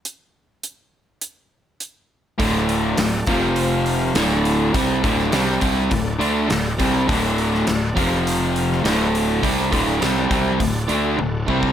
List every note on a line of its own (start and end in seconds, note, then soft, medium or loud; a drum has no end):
0.05 closed hi-hat medium
0.63 closed hi-hat medium
1.21 closed hi-hat medium
1.80 closed hi-hat medium
2.38 2.94 D1 medium
2.38 2.96 D2 loud
2.38 2.97 A2 loud
2.38 2.97 D3 loud
2.38 3.27 D4 medium
2.38 3.27 F#4 medium
2.38 3.27 A4 medium
2.38 3.28 D5 medium
2.38 kick loud
2.38 open hi-hat medium
2.69 open hi-hat medium
2.98 3.25 D1 medium
2.98 3.22 D2 medium
2.98 3.22 A2 medium
2.98 snare loud
2.98 open hi-hat medium
3.26 4.11 F1 medium
3.26 4.14 F2 medium
3.26 4.14 C3 loud
3.26 4.15 F3 loud
3.26 4.16 C4 medium
3.26 4.15 F4 medium
3.26 4.16 C5 medium
3.26 4.16 F5 medium
3.26 kick loud
3.26 open hi-hat medium
3.56 open hi-hat medium
3.86 open hi-hat medium
4.15 4.70 D1 loud
4.15 4.73 D2 medium
4.15 4.73 A2 medium
4.15 4.73 D3 loud
4.15 6.48 D4 medium
4.15 6.48 F#4 medium
4.15 6.48 A4 medium
4.15 6.48 D5 medium
4.15 snare loud
4.15 open hi-hat medium
4.45 open hi-hat medium
4.74 5.02 C2 loud
4.74 5.03 C3 loud
4.74 5.03 G3 loud
4.74 5.03 C4 loud
4.74 kick loud
4.74 open hi-hat medium
5.03 5.31 D1 medium
5.03 5.32 D2 medium
5.03 5.32 A2 loud
5.03 5.32 D3 loud
5.03 kick loud
5.03 open hi-hat medium
5.19 snare soft
5.32 5.60 C2 loud
5.32 5.60 C3 medium
5.32 5.60 G3 loud
5.32 5.61 C4 loud
5.32 snare loud
5.32 open hi-hat medium
5.61 5.89 C2 medium
5.61 5.90 C3 medium
5.61 5.90 G3 loud
5.61 5.91 C4 loud
5.61 kick loud
5.61 open hi-hat medium
5.91 6.19 D1 medium
5.91 6.15 D2 medium
5.91 6.15 A2 medium
5.91 kick loud
5.91 open hi-hat medium
6.19 6.48 D2 medium
6.19 6.48 D3 medium
6.19 6.48 A3 medium
6.19 6.49 D4 loud
6.19 open hi-hat medium
6.48 6.77 D1 medium
6.48 6.72 D2 medium
6.48 6.73 A2 medium
6.48 7.95 D4 medium
6.48 7.95 F#4 medium
6.48 7.95 A4 medium
6.48 7.95 D5 medium
6.48 snare loud
6.48 open hi-hat medium
6.78 7.07 C2 medium
6.78 7.07 C3 medium
6.78 7.08 G3 loud
6.78 7.08 C4 loud
6.78 kick loud
6.78 open hi-hat medium
7.08 7.63 D1 loud
7.08 7.65 D2 medium
7.08 7.66 A2 loud
7.08 7.66 D3 loud
7.08 kick loud
7.08 open hi-hat medium
7.38 open hi-hat medium
7.54 snare soft
7.66 7.95 D1 loud
7.66 7.90 D2 medium
7.66 7.90 A2 medium
7.66 snare loud
7.66 open hi-hat medium
7.95 8.80 F1 loud
7.95 8.83 F2 loud
7.95 8.83 C3 loud
7.95 8.83 F3 loud
7.95 8.83 C4 medium
7.95 8.84 F4 medium
7.95 8.83 C5 medium
7.95 8.84 F5 medium
7.95 kick loud
7.95 open hi-hat medium
8.27 open hi-hat medium
8.56 open hi-hat medium
8.72 snare soft
8.83 9.39 D1 loud
8.83 9.42 D2 loud
8.83 9.42 A2 medium
8.83 9.42 D3 medium
8.83 11.17 D4 medium
8.83 11.17 F#4 medium
8.83 11.17 A4 medium
8.83 11.17 D5 medium
8.83 snare loud
8.83 open hi-hat medium
9.15 open hi-hat medium
9.42 9.71 C2 loud
9.42 9.71 C3 loud
9.42 9.71 G3 loud
9.42 9.71 C4 loud
9.42 kick loud
9.42 open hi-hat medium
9.72 10.00 D1 medium
9.72 10.00 D2 loud
9.72 10.01 A2 medium
9.72 10.01 D3 loud
9.72 kick loud
9.72 open hi-hat medium
10.01 10.29 C2 loud
10.01 10.29 C3 medium
10.01 10.30 G3 medium
10.01 10.30 C4 medium
10.01 snare loud
10.01 open hi-hat medium
10.31 10.58 C2 medium
10.31 10.59 C3 medium
10.31 10.60 G3 loud
10.31 10.60 C4 loud
10.31 kick loud
10.31 open hi-hat medium
10.60 10.87 D1 medium
10.60 10.83 D2 medium
10.60 10.84 A2 medium
10.60 kick medium
10.60 open hi-hat medium
10.89 11.17 D2 medium
10.89 11.18 D3 medium
10.89 11.18 A3 loud
10.89 11.19 D4 medium
10.89 open hi-hat medium
11.18 11.46 D1 medium
11.18 11.43 D2 medium
11.18 11.43 A2 medium
11.18 11.72 D4 medium
11.18 11.72 F#4 medium
11.18 11.72 A4 medium
11.18 high tom medium
11.48 11.72 C2 loud
11.48 11.72 C3 medium
11.48 11.72 G3 medium
11.48 11.72 C4 loud
11.48 kick medium
11.63 kick medium